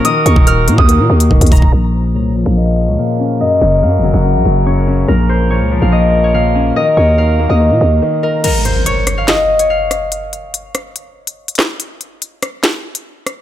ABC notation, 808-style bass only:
X:1
M:4/4
L:1/16
Q:1/4=143
K:Bbm
V:1 name="808-style bass" clef=bass
z2 E,, E,,,3 B,, E,,2 B,, E,,2 E,,, E,, E,,, E,,, | B,,,4 C,,3/2 B,,,3/2 B,,,4 D,, z4 | z2 G,,,2 G,,3/2 G,,,3/2 G,,,2 B,,, G,,,6 | B,,,4- B,,, D,,2 B,,,8- B,,, |
z2 E,,4- E,, E,,2 B,, E,,2 z4 | z16 | z16 | z16 |]